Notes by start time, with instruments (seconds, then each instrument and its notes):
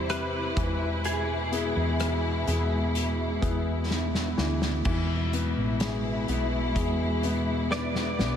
Already playing: fingered electric bass E2, string section C3 G3 E4, grand piano E3 C4 E4 G4
0.09 grand piano C4 E4 G4, clean electric guitar B4, cross-stick, closed hi-hat
0.57 fingered electric bass E2, string section B2 G#3, grand piano E3, kick, closed hi-hat
1.04 clean electric guitar G#4, closed hi-hat
1.52 grand piano B3 E4 G#4, closed hi-hat
1.76 fingered electric bass E2
2.00 cross-stick, closed hi-hat
2.47 fingered electric bass E2, grand piano B3 E4 G#4, closed hi-hat
2.95 closed hi-hat
3.42 fingered electric bass E2, grand piano B3 E4 G#4, kick, closed hi-hat
3.91 snare
4.15 snare
4.37 fingered electric bass D2, grand piano E3, snare
4.62 snare
4.85 fingered electric bass E2, string section B2 G#3 E4, grand piano E3, kick, crash
5.33 grand piano B3, closed hi-hat
5.57 fingered electric bass A1
5.80 grand piano G#4, snare, closed hi-hat
6.28 fingered electric bass B1, grand piano B3, closed hi-hat
6.76 fingered electric bass E2, grand piano G#4, kick, closed hi-hat
7.23 grand piano B3, closed hi-hat
7.71 grand piano B4, clean electric guitar D5, snare
7.95 snare
8.19 fingered electric bass B1, grand piano B3, snare